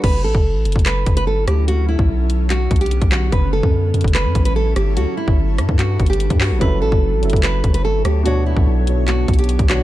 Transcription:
0.04 F#1 F#3 C#4 E4 A4 B4, kick, closed hi-hat, crash
0.24 A1 A4
0.35 F#1, kick
0.55 A1
0.65 F#1, closed hi-hat
0.72 F#1, kick, closed hi-hat
0.79 closed hi-hat
0.86 B4, clap, closed hi-hat
1.06 F#1, kick, closed hi-hat
1.17 B4, closed hi-hat
1.27 G1 A4
1.47 D2 G4, cross-stick, closed hi-hat
1.68 D3 B3 F#4, closed hi-hat
1.89 E4
1.99 B1, kick
2.09 B1
2.30 closed hi-hat
2.50 F#4, clap, closed hi-hat
2.71 B1, kick, closed hi-hat
2.76 closed hi-hat
2.81 G4, closed hi-hat
2.86 closed hi-hat
2.91 closed hi-hat
3.02 B1, kick, closed hi-hat
3.12 F#4, cross-stick, clap, closed hi-hat
3.32 F#1 F#3 C#4 E4 A4 B4, kick, closed hi-hat
3.53 A4
3.63 F#2, kick
3.94 F#2, closed hi-hat
4.01 F#1, kick, closed hi-hat
4.08 closed hi-hat
4.15 B4, clap, closed hi-hat
4.25 F#2
4.35 A1, kick, closed hi-hat
4.45 B4, closed hi-hat
4.56 A4
4.76 G1 G4, cross-stick, closed hi-hat
4.97 D2 G3 D4 F#4 B4, closed hi-hat
5.17 E4
5.28 G1, kick
5.38 G1
5.58 G2, cross-stick, closed hi-hat
5.69 G2, kick
5.79 F#4, clap, closed hi-hat
6.00 G1, kick, closed hi-hat
6.06 G4, closed hi-hat
6.13 closed hi-hat
6.20 closed hi-hat
6.30 G2, kick, closed hi-hat
6.41 F#4, cross-stick, clap, open hi-hat
6.51 A1
6.59 F#1 F#3 C#4 E4 A4 B4 C#5, kick, closed hi-hat
6.82 A1 A4
6.92 F#1, kick
7.13 A1
7.21 F#1 F#3 C#4 E4 A4, closed hi-hat
7.30 F#1, kick, closed hi-hat
7.36 closed hi-hat
7.43 B4, clap, closed hi-hat
7.64 F#1, kick, closed hi-hat
7.74 B4, closed hi-hat
7.84 G1 A4
8.05 D2 G4, cross-stick, closed hi-hat
8.23 B2 D3 B3 D4 F#4 C#5, closed hi-hat
8.46 E4
8.56 B1, kick
8.67 B1
8.86 B2 B3 D4 C#5, closed hi-hat
9.08 F#4, clap, closed hi-hat
9.28 B1, kick, closed hi-hat
9.33 closed hi-hat
9.39 G4, closed hi-hat
9.44 closed hi-hat
9.49 closed hi-hat
9.59 B1, kick, closed hi-hat
9.67 B2 B3 D4 F#4 C#5, cross-stick, clap, closed hi-hat

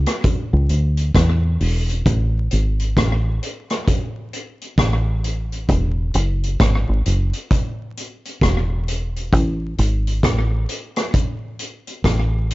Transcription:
0.06 cross-stick, closed hi-hat
0.24 kick, closed hi-hat
0.53 C#2
0.69 D2, closed hi-hat
0.97 closed hi-hat
1.15 E2, kick, cross-stick, closed hi-hat
1.60 E1, open hi-hat
1.89 closed hi-hat
2.06 A1, kick, closed hi-hat
2.51 G#1, closed hi-hat
2.80 closed hi-hat
2.97 A1, kick, cross-stick, closed hi-hat
3.43 closed hi-hat
3.70 cross-stick, closed hi-hat
3.88 kick, closed hi-hat
4.33 closed hi-hat
4.61 closed hi-hat
4.78 A1, kick, cross-stick, closed hi-hat
5.24 closed hi-hat
5.52 closed hi-hat
5.69 E1, kick, closed hi-hat
6.14 F#1, closed hi-hat
6.43 closed hi-hat
6.60 G#1, kick, cross-stick, closed hi-hat
6.89 G#1
7.06 F#1, closed hi-hat
7.33 closed hi-hat
7.51 kick, closed hi-hat
7.97 closed hi-hat
8.25 closed hi-hat
8.41 E1, kick, cross-stick, closed hi-hat
8.88 closed hi-hat
9.16 closed hi-hat
9.33 A1, kick, closed hi-hat
9.78 G#1, closed hi-hat
10.07 closed hi-hat
10.23 A1, kick, cross-stick, closed hi-hat
10.69 closed hi-hat
10.96 cross-stick, closed hi-hat
11.14 kick, closed hi-hat
11.59 closed hi-hat
11.87 closed hi-hat
12.04 A1, kick, cross-stick, closed hi-hat
12.51 closed hi-hat

